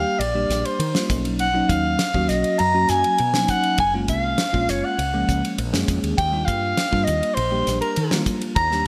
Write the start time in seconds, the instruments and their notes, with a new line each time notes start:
Already playing: tine electric piano G3 A#3 D4 G4, soprano saxophone F5
0.19 fretless electric bass A#1, soprano saxophone D5, ride
0.35 tine electric piano G3 A#3 D4 G4
0.49 fretless electric bass A#1, snare, hi-hat pedal, ride
0.65 soprano saxophone C5, ride
0.79 fretless electric bass D#3, ride
0.94 tine electric piano G3 A#3 D4 F4, snare
1.09 fretless electric bass B1, tine electric piano F#3 A#3 C#4 D#4, kick, hi-hat pedal, ride
1.25 ride
1.39 soprano saxophone F#5, ride
1.54 tine electric piano F#3 A#3 C#4 D#4
1.69 fretless electric bass D#2, soprano saxophone F5, kick, hi-hat pedal, ride
1.99 snare, ride
2.14 fretless electric bass D#2, tine electric piano F#3 A#3 C#4 F#4, kick
2.29 fretless electric bass B1, soprano saxophone D#5, snare, hi-hat pedal, ride
2.44 ride
2.59 fretless electric bass F#2, soprano saxophone A#5, ride
2.74 tine electric piano F#3 A#3 C#4 F#4
2.89 fretless electric bass F#2, soprano saxophone G#5, snare, hi-hat pedal, ride
3.04 ride
3.18 fretless electric bass B2, ride
3.33 tine electric piano F#3 A#3 C#4 D#4, snare
3.48 soprano saxophone F#5, kick, hi-hat pedal, ride
3.63 ride
3.78 fretless electric bass F#1, soprano saxophone G#5, kick, ride
3.94 tine electric piano G#3 A#3 C#4 F4
4.08 fretless electric bass C2, soprano saxophone F5, kick, hi-hat pedal, ride
4.38 snare, ride
4.53 fretless electric bass A#1, tine electric piano G#3 A#3 C#4 F4, kick
4.69 fretless electric bass F#1, soprano saxophone C#5, snare, hi-hat pedal, ride
4.85 soprano saxophone F#5
4.98 fretless electric bass C#2, ride
5.14 tine electric piano F3 G#3 A#3 C#4
5.29 fretless electric bass C#2, kick, hi-hat pedal, ride
5.45 ride
5.58 fretless electric bass A#1, ride
5.73 fretless electric bass F#2, tine electric piano G#3 A#3 C#4 G#4, snare
5.88 fretless electric bass F2, kick, hi-hat pedal, ride
6.03 fretless electric bass D#2, ride
6.18 fretless electric bass D#2, soprano saxophone G5, kick, ride
6.32 tine electric piano G3 A#3 D4 F4
6.45 fretless electric bass G2, soprano saxophone F5, kick, hi-hat pedal, ride
6.77 snare, ride
6.91 fretless electric bass G2, tine electric piano G3 A#3 D4 F4, kick
7.04 fretless electric bass D#2, soprano saxophone D#5, hi-hat pedal, ride
7.23 ride
7.34 fretless electric bass A#1, soprano saxophone C5, ride
7.51 tine electric piano G3 A#3 D4 G4
7.67 fretless electric bass A#1, snare, hi-hat pedal, ride
7.81 soprano saxophone A#4, ride
7.96 fretless electric bass D#3, ride
8.11 tine electric piano G3 A#3 D4 F4, snare
8.26 kick, hi-hat pedal, ride
8.41 ride
8.56 fretless electric bass D#2, soprano saxophone A#5, kick, ride
8.70 tine electric piano G3 A#3 D4 G4, snare